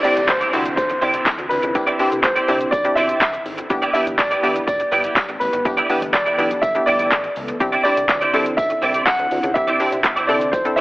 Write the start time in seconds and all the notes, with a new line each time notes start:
Already playing: D3 C4 E4, downlifter
0.03 C4 D4 E4 G4 D5, open hi-hat, tambourine, shaker
0.16 C2, muted clean electric guitar stroke, closed hi-hat, shaker
0.27 D2 C5, muted clean electric guitar stroke, kick, clap, tambourine, shaker
0.40 C4 E4 G4 D5, closed hi-hat, shaker
0.53 C2 C4 D4 E4 F#4 G4 D5, open hi-hat, tambourine, shaker
0.65 muted clean electric guitar stroke, closed hi-hat, shaker
0.76 B1 C5, muted clean electric guitar stroke, kick, tambourine, shaker
0.89 muted clean electric guitar stroke, closed hi-hat, shaker
1.01 C2 C4 E4 G4 D5, open hi-hat, shaker
1.14 C4 E4 G4 D5, closed hi-hat, shaker
1.26 muted clean electric guitar stroke, kick, clap, tambourine, shaker
1.38 D2, muted clean electric guitar stroke, closed hi-hat, shaker
1.49 D2 B4, open hi-hat, tambourine, shaker
1.62 C#2, muted clean electric guitar stroke, closed hi-hat, shaker
1.75 C2 C4 D4 E4 G4, muted clean electric guitar stroke, kick, tambourine, shaker
1.87 C4 E4 G4 D5, closed hi-hat, shaker
1.99 C4 D4 E4 G4 D5, open hi-hat, tambourine, shaker
2.11 C2, muted clean electric guitar stroke, closed hi-hat, shaker
2.22 G1 C5, muted clean electric guitar stroke, kick, clap, tambourine, shaker
2.35 C4 E4 G4 D5, closed hi-hat, shaker
2.48 C2 C4 D4 E4 G4 D5, open hi-hat, tambourine, shaker
2.60 muted clean electric guitar stroke, closed hi-hat, shaker
2.71 B1 D5, muted clean electric guitar stroke, kick, tambourine, shaker
2.84 C4 D4 E4 G4, muted clean electric guitar stroke, closed hi-hat, shaker
2.95 B1 C4 E4 G4 D5 E5, open hi-hat, tambourine, shaker
3.09 C4 E4 G4 D5, closed hi-hat, shaker
3.21 C2, muted clean electric guitar stroke, kick, clap, tambourine, shaker
3.33 muted clean electric guitar stroke, closed hi-hat, shaker
3.46 G#1, open hi-hat, tambourine, shaker
3.58 muted clean electric guitar stroke, closed hi-hat, shaker
3.70 G1 E3 B3 D4 E4 G4, muted clean electric guitar stroke, kick, tambourine, shaker
3.82 B3 E4 G4 D5, closed hi-hat, shaker
3.93 B3 D4 E4 G4 D5 E5, open hi-hat, tambourine, shaker
4.06 G1, muted clean electric guitar stroke, closed hi-hat, shaker
4.18 A1 D5, muted clean electric guitar stroke, kick, clap, tambourine, shaker
4.31 B3 E4 G4 D5, closed hi-hat, shaker
4.43 G1 B3 D4 E4 G4 D5, open hi-hat, tambourine, shaker
4.55 muted clean electric guitar stroke, closed hi-hat, shaker
4.67 E1 D5, muted clean electric guitar stroke, kick, tambourine, shaker
4.80 muted clean electric guitar stroke, closed hi-hat, shaker
4.92 G1 B3 E4 G4 D5, open hi-hat, tambourine, shaker
5.04 B3 E4 G4 D5, closed hi-hat, shaker
5.16 muted clean electric guitar stroke, kick, clap, tambourine, shaker
5.28 A1, muted clean electric guitar stroke, closed hi-hat, shaker
5.40 A1 B4, open hi-hat, tambourine, shaker
5.53 G#1, muted clean electric guitar stroke, closed hi-hat, shaker
5.65 G1 B3 D4 E4 G4 A4, muted clean electric guitar stroke, kick, tambourine, shaker
5.77 B3 E4 G4 D5, closed hi-hat, shaker
5.89 B3 D4 E4 G4 D5, open hi-hat, tambourine, shaker
6.02 G1, muted clean electric guitar stroke, closed hi-hat, shaker
6.13 E1 D5, muted clean electric guitar stroke, kick, clap, tambourine, shaker
6.26 B3 E4 G4 D5, closed hi-hat, shaker
6.38 B1 B3 D4 E4 G4 D5, open hi-hat, tambourine, shaker
6.50 muted clean electric guitar stroke, closed hi-hat, shaker
6.62 G1 E5, muted clean electric guitar stroke, kick, tambourine, shaker
6.75 B3 D4 E4 G4, muted clean electric guitar stroke, closed hi-hat, shaker
6.86 G1 B3 E4 G4 D5, open hi-hat, tambourine, shaker
6.99 B3 E4 G4 D5, closed hi-hat, shaker
7.11 A1, muted clean electric guitar stroke, kick, clap, tambourine, shaker
7.24 muted clean electric guitar stroke, closed hi-hat, shaker
7.36 C#2, open hi-hat, tambourine, shaker
7.48 muted clean electric guitar stroke, closed hi-hat, shaker
7.60 C2 D3 C4 D4 E4 G4, muted clean electric guitar stroke, kick, tambourine, shaker
7.72 C4 E4 G4 D5, closed hi-hat, shaker
7.83 C4 D4 E4 G4 D5, open hi-hat, tambourine, shaker
7.97 C2, muted clean electric guitar stroke, closed hi-hat, shaker
8.09 D2, muted clean electric guitar stroke, kick, clap, tambourine, shaker
8.21 C4 E4 G4 D5, closed hi-hat, shaker
8.33 C2 C4 D4 E4 G4 A4 D5, open hi-hat, tambourine, shaker
8.45 muted clean electric guitar stroke, closed hi-hat, shaker
8.57 B1 E5, muted clean electric guitar stroke, kick, tambourine, shaker
8.70 muted clean electric guitar stroke, closed hi-hat, shaker
8.82 C2 C4 E4 G4 D5, open hi-hat, shaker
8.94 C4 E4 G4 D5, closed hi-hat, shaker
9.05 F#5, muted clean electric guitar stroke, kick, clap, tambourine, shaker
9.19 D2, muted clean electric guitar stroke, closed hi-hat, shaker
9.31 D2, open hi-hat, tambourine, shaker
9.43 C#2, muted clean electric guitar stroke, closed hi-hat, shaker
9.54 C2 C4 D4 E4 G4 E5, muted clean electric guitar stroke, kick, tambourine, shaker
9.67 C4 E4 G4 D5, closed hi-hat, shaker
9.79 C4 D4 E4 G4 D5, open hi-hat, tambourine, shaker
9.92 C2, muted clean electric guitar stroke, closed hi-hat, shaker
10.04 G1, muted clean electric guitar stroke, kick, clap, tambourine, shaker
10.16 C4 E4 G4 D5, closed hi-hat, shaker
10.27 C2 C4 D4 E4 G4 A4 D5, open hi-hat, tambourine, shaker
10.41 muted clean electric guitar stroke, closed hi-hat, shaker
10.52 B1 C5, muted clean electric guitar stroke, kick, tambourine, shaker
10.65 C4 D4 E4 A4, muted clean electric guitar stroke, closed hi-hat, shaker
10.76 B1 C4 E4 E5, open hi-hat, shaker